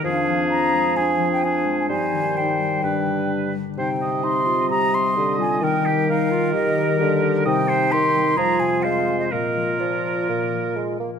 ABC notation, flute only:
X:1
M:4/4
L:1/16
Q:1/4=130
K:Cm
V:1 name="Flute"
f4 b4 a3 g a3 a | a4 g8 z4 | g4 c'4 b2 c'4 a2 | g4 f4 e6 z2 |
[K:Bbmix] g4 c'4 b2 a2 f3 e | e4 d8 z4 |]